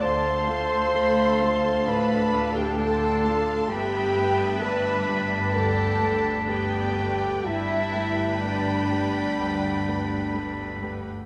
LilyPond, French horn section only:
\new Staff \with { instrumentName = "French horn section" } { \time 4/4 \key g \mixolydian \tempo 4 = 64 c''2 b'8. g'16 a'4 | g'4 b'4 a'4 g'4 | e'4 d'2~ d'8 r8 | }